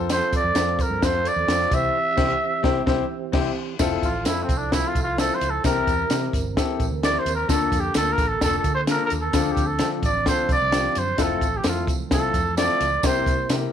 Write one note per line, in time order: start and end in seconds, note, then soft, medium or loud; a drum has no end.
0.00 0.20 F2 medium
0.00 1.69 F3 medium
0.00 0.41 C4 medium
0.00 3.74 C4 medium
0.00 0.41 F4 medium
0.00 0.41 A4 medium
0.00 1.68 A4 medium
0.00 0.44 C5 loud
0.10 0.32 C5 loud
0.10 snare loud
0.10 closed hi-hat loud
0.10 tambourine medium
0.33 0.83 D5 loud
0.33 kick medium
0.33 closed hi-hat medium
0.33 tambourine soft
0.44 0.53 F2 medium
0.55 0.81 F2 medium
0.55 0.81 C4 medium
0.55 0.81 F4 medium
0.55 0.81 A4 medium
0.55 0.82 C5 medium
0.55 snare loud
0.55 closed hi-hat loud
0.55 tambourine medium
0.79 1.06 A#4 medium
0.79 kick loud
0.79 closed hi-hat medium
0.79 tambourine medium
0.90 0.99 G2 medium
1.01 1.28 F2 loud
1.01 1.28 C4 medium
1.01 1.28 F4 medium
1.01 1.28 A4 medium
1.01 1.28 C5 medium
1.01 1.29 C5 loud
1.01 kick medium
1.01 snare loud
1.01 closed hi-hat medium
1.01 tambourine medium
1.25 1.76 D5 loud
1.25 closed hi-hat medium
1.25 tambourine soft
1.36 1.45 E2 loud
1.47 1.65 F2 loud
1.47 1.70 C4 medium
1.47 1.71 F4 medium
1.47 1.71 A4 medium
1.47 1.72 C5 medium
1.47 snare loud
1.47 closed hi-hat medium
1.47 tambourine medium
1.60 snare soft
1.71 1.88 C2 medium
1.71 1.93 C3 medium
1.71 3.77 E3 medium
1.71 1.95 C4 medium
1.71 1.95 E4 medium
1.71 3.77 G4 medium
1.71 1.95 G4 medium
1.71 1.95 C5 medium
1.71 3.35 E5 loud
1.71 kick loud
1.71 closed hi-hat medium
1.71 tambourine medium
2.16 2.33 C2 loud
2.16 2.33 C4 loud
2.16 2.33 E4 medium
2.16 2.33 G4 medium
2.16 2.33 C5 medium
2.16 kick loud
2.16 snare loud
2.16 crash medium
2.63 2.79 C2 loud
2.63 2.79 C4 loud
2.63 2.79 E4 loud
2.63 2.79 G4 loud
2.63 2.80 C5 loud
2.63 kick loud
2.63 snare loud
2.86 3.03 C2 loud
2.86 3.02 C4 loud
2.86 3.02 E4 loud
2.86 3.03 G4 loud
2.86 3.03 C5 loud
2.86 kick loud
2.86 snare loud
3.32 3.49 C2 loud
3.32 3.48 C4 loud
3.32 3.49 E4 loud
3.32 3.49 G4 loud
3.32 3.49 C5 loud
3.32 kick loud
3.32 snare loud
3.32 crash medium
3.79 3.96 F1 medium
3.79 5.62 F3 medium
3.79 4.05 C4 loud
3.79 4.06 E4 loud
3.79 5.63 E4 medium
3.79 4.06 F4 medium
3.79 4.06 A4 loud
3.79 kick loud
3.79 snare loud
3.79 crash medium
3.79 tambourine medium
4.03 4.26 A1 medium
4.03 4.25 F4 medium
4.03 kick medium
4.03 closed hi-hat medium
4.03 tambourine soft
4.25 4.43 F2 medium
4.25 4.51 C4 medium
4.25 4.51 E4 medium
4.25 4.44 E4 medium
4.25 4.52 F4 medium
4.25 4.52 A4 medium
4.25 snare loud
4.25 closed hi-hat loud
4.25 tambourine medium
4.43 4.58 C4 medium
4.49 4.82 C2 medium
4.49 kick loud
4.49 closed hi-hat medium
4.49 tambourine medium
4.57 4.74 D4 medium
4.71 4.97 C4 medium
4.71 4.98 E4 medium
4.71 4.89 E4 medium
4.71 4.98 F4 medium
4.71 4.98 A4 medium
4.71 kick medium
4.71 snare loud
4.71 closed hi-hat medium
4.71 tambourine medium
4.87 5.03 F4 medium
4.95 5.29 C2 medium
4.95 kick medium
4.95 closed hi-hat medium
4.95 tambourine medium
5.03 5.21 F4 medium
5.17 5.43 C4 medium
5.17 5.44 E4 medium
5.17 5.44 F4 medium
5.17 5.36 A4 loud
5.17 5.44 C5 medium
5.17 snare loud
5.17 closed hi-hat medium
5.17 tambourine medium
5.30 snare soft
5.35 5.51 C5 medium
5.41 5.58 C#2 medium
5.41 closed hi-hat medium
5.41 tambourine medium
5.50 5.65 A4 medium
5.64 5.81 C2 loud
5.64 6.30 C3 medium
5.64 7.47 E3 medium
5.64 5.90 C4 medium
5.64 7.47 C4 medium
5.64 5.90 E4 medium
5.64 5.91 G4 medium
5.64 7.47 A#4 medium
5.64 5.91 A#4 loud
5.64 6.30 A#4 loud
5.64 kick loud
5.64 snare loud
5.64 closed hi-hat loud
5.64 tambourine medium
5.87 6.04 E2 medium
5.87 kick medium
5.87 closed hi-hat medium
5.87 tambourine medium
6.10 6.27 C3 medium
6.10 6.36 C4 medium
6.10 6.37 E4 medium
6.10 6.37 G4 medium
6.10 6.37 A#4 medium
6.10 snare loud
6.10 closed hi-hat loud
6.10 tambourine medium
6.33 6.59 G1 medium
6.33 kick medium
6.33 closed hi-hat medium
6.33 tambourine medium
6.56 6.83 C4 medium
6.56 6.83 E4 medium
6.56 6.83 G4 medium
6.56 6.83 A4 medium
6.56 kick medium
6.56 snare loud
6.56 closed hi-hat medium
6.56 tambourine medium
6.80 6.88 A#1 medium
6.80 kick medium
6.80 closed hi-hat medium
6.80 tambourine soft
6.91 7.16 D2 medium
7.03 7.29 C4 medium
7.03 7.29 E4 medium
7.03 7.29 G4 medium
7.03 7.29 A#4 medium
7.03 7.20 D5 loud
7.03 snare loud
7.03 closed hi-hat medium
7.03 tambourine medium
7.14 snare soft
7.19 7.34 C5 loud
7.25 7.42 D#2 medium
7.25 closed hi-hat medium
7.25 tambourine medium
7.35 7.51 A#4 medium
7.48 7.66 D2 medium
7.48 11.14 D3 medium
7.48 8.14 D3 medium
7.48 9.32 A#3 medium
7.48 7.75 A#3 loud
7.48 7.75 D4 medium
7.48 7.75 F4 medium
7.48 9.32 A4 medium
7.48 7.82 A4 loud
7.48 7.75 A4 loud
7.48 kick loud
7.48 snare loud
7.48 closed hi-hat medium
7.48 tambourine medium
7.72 7.89 F2 loud
7.72 kick medium
7.72 closed hi-hat medium
7.72 tambourine medium
7.80 7.95 G4 medium
7.94 8.12 D2 medium
7.94 8.21 A#3 medium
7.94 8.21 D4 medium
7.94 8.21 F4 medium
7.94 8.22 A4 medium
7.94 8.14 A4 loud
7.94 snare loud
7.94 closed hi-hat loud
7.94 tambourine medium
8.12 8.29 A#4 loud
8.18 8.35 A1 medium
8.18 kick loud
8.18 closed hi-hat medium
8.18 tambourine medium
8.27 8.42 A4 medium
8.41 8.58 F1 loud
8.41 8.67 A#3 medium
8.41 8.67 D4 medium
8.41 8.68 F4 medium
8.41 8.68 A4 medium
8.41 8.57 A4 loud
8.41 kick medium
8.41 snare loud
8.41 closed hi-hat medium
8.41 tambourine medium
8.59 8.72 A4 medium
8.64 8.98 D3 medium
8.64 kick medium
8.64 closed hi-hat medium
8.64 tambourine medium
8.75 8.81 C5 medium
8.87 9.13 A#3 medium
8.87 9.13 D4 medium
8.87 9.14 F4 medium
8.87 9.14 A4 medium
8.87 9.04 A#4 medium
8.87 snare loud
8.87 closed hi-hat medium
8.87 tambourine medium
9.05 9.12 A#4 medium
9.10 9.28 D#2 medium
9.10 closed hi-hat medium
9.10 tambourine medium
9.21 9.53 A4 medium
9.32 9.51 D2 loud
9.32 9.99 D3 medium
9.32 12.99 F3 medium
9.32 11.16 C4 medium
9.32 9.60 C4 medium
9.32 9.60 D4 medium
9.32 9.60 F4 medium
9.32 9.60 A4 loud
9.32 kick loud
9.32 snare loud
9.32 closed hi-hat loud
9.32 tambourine medium
9.52 9.68 G4 medium
9.57 9.81 D2 medium
9.57 kick medium
9.57 closed hi-hat medium
9.57 tambourine medium
9.67 9.89 A4 medium
9.79 9.97 D3 loud
9.79 10.06 C4 medium
9.79 10.06 D4 medium
9.79 10.06 F4 medium
9.79 10.06 A4 medium
9.79 snare loud
9.79 closed hi-hat loud
9.79 tambourine medium
10.03 10.28 A1 medium
10.03 10.26 D5 medium
10.03 kick medium
10.03 closed hi-hat medium
10.03 tambourine medium
10.26 10.52 C4 medium
10.26 10.52 D4 medium
10.26 10.53 F4 medium
10.26 10.53 A4 medium
10.26 10.49 C5 medium
10.26 kick medium
10.26 snare loud
10.26 closed hi-hat medium
10.26 tambourine medium
10.49 10.57 C2 medium
10.49 11.00 D5 loud
10.49 kick medium
10.49 closed hi-hat medium
10.49 tambourine soft
10.61 10.86 C2 loud
10.71 10.98 C4 medium
10.71 10.98 D4 medium
10.71 10.98 F4 medium
10.71 10.98 G4 medium
10.71 snare loud
10.71 closed hi-hat medium
10.71 tambourine medium
10.84 snare soft
10.95 11.13 F#2 medium
10.95 11.24 C5 medium
10.95 closed hi-hat medium
10.95 tambourine medium
11.17 11.35 F1 medium
11.17 13.02 E3 medium
11.17 13.02 A3 medium
11.17 11.44 C4 medium
11.17 11.44 E4 medium
11.17 11.45 F4 medium
11.17 11.45 A4 loud
11.17 kick loud
11.17 snare loud
11.17 closed hi-hat loud
11.17 tambourine loud
11.22 11.58 A4 medium
11.41 11.58 A1 medium
11.41 kick medium
11.41 closed hi-hat medium
11.41 tambourine medium
11.57 11.67 G4 medium
11.63 11.88 F2 loud
11.63 11.90 C4 medium
11.63 11.91 E4 medium
11.63 11.91 F4 medium
11.63 11.91 A4 medium
11.63 snare loud
11.63 closed hi-hat loud
11.63 tambourine medium
11.68 11.88 F4 medium
11.87 12.05 C2 medium
11.87 kick loud
11.87 closed hi-hat medium
11.87 tambourine medium
12.11 12.28 C2 medium
12.11 12.37 C4 medium
12.11 12.37 E4 medium
12.11 12.37 F4 medium
12.11 12.37 A4 medium
12.11 12.55 A4 loud
12.11 kick medium
12.11 snare loud
12.11 closed hi-hat medium
12.11 tambourine medium
12.34 12.68 F2 medium
12.34 kick medium
12.34 closed hi-hat medium
12.34 tambourine soft
12.57 12.83 C4 medium
12.57 12.83 E4 medium
12.57 12.84 F4 medium
12.57 12.84 A4 medium
12.57 13.07 D5 loud
12.57 snare loud
12.57 closed hi-hat medium
12.57 tambourine medium
12.69 snare soft
12.81 12.97 C#2 medium
12.81 closed hi-hat medium
12.81 tambourine medium
13.03 13.20 C2 loud
13.03 13.72 C3 medium
13.03 13.69 C3 medium
13.03 13.72 A#3 medium
13.03 13.29 C4 loud
13.03 13.29 E4 medium
13.03 13.72 E4 medium
13.03 13.30 G4 medium
13.03 13.30 A#4 loud
13.03 13.51 C5 loud
13.03 kick loud
13.03 snare loud
13.03 closed hi-hat loud
13.03 tambourine loud
13.26 13.43 C2 medium
13.26 kick medium
13.26 closed hi-hat medium
13.26 tambourine medium
13.49 13.66 C3 loud
13.49 13.72 C4 medium
13.49 13.72 E4 medium
13.49 13.72 G4 medium
13.49 13.72 A#4 medium
13.49 snare loud
13.49 closed hi-hat loud
13.49 tambourine medium